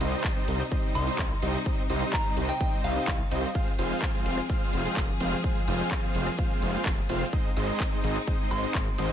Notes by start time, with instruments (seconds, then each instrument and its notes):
Already playing: string section C3 G3 D#4
0.01 detuned saw bass C2, supersaw synth G3 C4 D#4 C5 D#5, open hi-hat, ride
0.12 closed hi-hat
0.24 kick, clap, closed hi-hat
0.36 supersaw synth G3 C4 D#4 C5 D#5, closed hi-hat
0.48 detuned saw bass C2, open hi-hat, ride
0.60 cross-stick, closed hi-hat
0.71 supersaw synth G3 C4 D#4 C5 D#5, kick, closed hi-hat
0.83 closed hi-hat
0.95 detuned saw bass C2, synth bell C6, open hi-hat, ride
1.07 supersaw synth G3 C4 D#4 C5 D#5, closed hi-hat
1.19 detuned saw bass C2, kick, clap, closed hi-hat
1.42 detuned saw bass C2, supersaw synth G3 C4 D#4 C5 D#5, open hi-hat, ride
1.54 closed hi-hat
1.66 supersaw synth G3 C4 D#4 C5 D#5, kick, closed hi-hat
1.90 detuned saw bass C2, supersaw synth G3 C4 D#4 C5 D#5, open hi-hat, ride
2.02 closed hi-hat
2.13 synth bell A#5, kick, clap, closed hi-hat
2.25 supersaw synth G3 C4 D#4 C5 D#5, closed hi-hat
2.37 detuned saw bass C2, open hi-hat, ride
2.49 synth bell G5, cross-stick, closed hi-hat
2.61 supersaw synth G3 C4 D#4 C5 D#5, kick, closed hi-hat
2.72 open hi-hat
2.84 detuned saw bass C2, synth bell F5, open hi-hat, ride
2.96 supersaw synth G3 C4 D#4 C5 D#5, closed hi-hat
3.08 detuned saw bass C2, kick, clap, closed hi-hat
3.31 detuned saw bass C2, supersaw synth G3 C4 D#4 C5 D#5, open hi-hat, ride
3.43 closed hi-hat
3.55 string section F3 C4 G#4, supersaw synth G#3 C4 F4 C5 F5, kick, closed hi-hat
3.79 detuned saw bass F1, supersaw synth G#3 C4 F4 C5 F5, open hi-hat, ride
3.90 closed hi-hat
4.02 kick, clap, closed hi-hat
4.14 supersaw synth G#3 C4 F4 C5 F5, closed hi-hat
4.26 detuned saw bass F1, open hi-hat, ride
4.38 cross-stick, closed hi-hat
4.49 supersaw synth G#3 C4 F4 C5 F5, kick, closed hi-hat
4.61 closed hi-hat
4.73 detuned saw bass F1, open hi-hat, ride
4.85 supersaw synth G#3 C4 F4 C5 F5, closed hi-hat
4.97 detuned saw bass F1, kick, clap, closed hi-hat
5.20 detuned saw bass F1, supersaw synth G#3 C4 F4 C5 F5, open hi-hat, ride
5.32 closed hi-hat
5.44 supersaw synth G#3 C4 F4 C5 F5, string section A#3, kick, closed hi-hat
5.68 detuned saw bass F1, supersaw synth G#3 C4 F4 C5 F5, open hi-hat, ride
5.79 closed hi-hat
5.91 kick, clap, closed hi-hat
6.03 supersaw synth G#3 C4 F4 C5 F5, closed hi-hat
6.15 detuned saw bass F1, open hi-hat, ride
6.27 cross-stick, closed hi-hat
6.38 supersaw synth G#3 C4 F4 C5 F5, kick, closed hi-hat
6.50 open hi-hat
6.62 detuned saw bass F1, open hi-hat, ride
6.74 supersaw synth G#3 C4 F4 C5 F5, closed hi-hat
6.86 detuned saw bass F1, kick, clap, closed hi-hat
7.09 detuned saw bass F1, supersaw synth G#3 C4 F4 C5 F5, open hi-hat, ride
7.33 supersaw synth G#3 C4 D#4 C5 D#5, string section G#3 C4 D#4, kick, closed hi-hat
7.57 detuned saw bass G#1, supersaw synth G#3 C4 D#4 C5 D#5, open hi-hat, ride
7.68 closed hi-hat
7.80 kick, clap, closed hi-hat
7.92 supersaw synth G#3 C4 D#4 C5 D#5, closed hi-hat
8.04 detuned saw bass G#1, open hi-hat, ride
8.16 cross-stick, closed hi-hat
8.27 supersaw synth G#3 C4 D#4 C5 D#5, kick, closed hi-hat
8.39 closed hi-hat
8.51 detuned saw bass G#1, synth bell C6, open hi-hat, ride
8.63 supersaw synth G#3 C4 D#4 C5 D#5, closed hi-hat
8.75 detuned saw bass G#1, kick, clap, closed hi-hat
8.98 detuned saw bass G#1, supersaw synth G#3 C4 D#4 C5 D#5, open hi-hat, ride